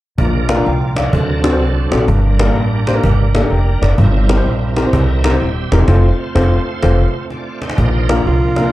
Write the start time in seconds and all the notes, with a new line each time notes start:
0.18 A#1 A#2 F3 A#3 D4 A#4, cajon bass
0.49 A#3 D4 F4 A#4, cajon slap
0.57 A#3 D4 F4 A#4
0.63 C2 F4 D5 G5 A#5, cajon slap
0.96 D4 A#4 D5 F5, cajon slap
1.12 D2 D3 F#3 C4 D4 A4, cajon bass
1.44 C4 D4 F#4 A4, cajon slap
1.52 C4 D4 F#4 C5
1.60 C2, cajon slap
1.91 A#1 C4 D4 F#4 A4, cajon slap
1.99 C4 D4 F#4 A4
2.07 G1 G2 G3 A#3 D4 A#4, cajon bass
2.39 A#3 D4 G4 A#4, cajon slap
2.48 A#3 D4 G4 A#4
2.55 A1, cajon slap
2.87 A#3 D4 G4 C5, cajon slap
2.94 A#3 D4 G4 A#4
3.04 G1, cajon bass
3.35 A#3 D4 G4 A4, cajon slap
3.43 A#3 D4 G4 A4
3.50 F1 G5 A#5, cajon slap
3.82 F#1 A#4 D5, cajon slap
3.98 G1 G2 G3 C4 E4 A#4, cajon bass
4.29 C4 E4 G4 A#4, cajon slap
4.37 C4 E4 G4 C5
4.46 A#1, cajon slap
4.76 C4 E4 G4 A#4, cajon slap
4.85 C4 E4 G4 C5
4.93 C2, cajon bass
5.24 C4 E4 G4 A#4, cajon slap
5.33 C4 E4 G4 C5
5.40 D#1 G4 E5, cajon slap
5.71 E1 C4 E4 G4 A#4 C5, cajon slap
5.81 C4 E4 G4 A4
5.86 F1 A3 C4 F4 A4 C5, cajon bass, cajon slap
6.35 F1 C4 F4 A4 C5, cajon bass, cajon slap
6.83 F1 C4 F4 A4 C5, cajon bass, cajon slap
7.30 F4 D5, cajon slap
7.62 D#4 C5, cajon slap
7.69 cajon slap
7.76 A#1 A#2 F3 A#3 D4 A#4, cajon bass
8.09 A#3 D4 F4 A#4, cajon slap
8.25 C2 F4, cajon slap
8.56 A#3 D4 F4 A#4, cajon slap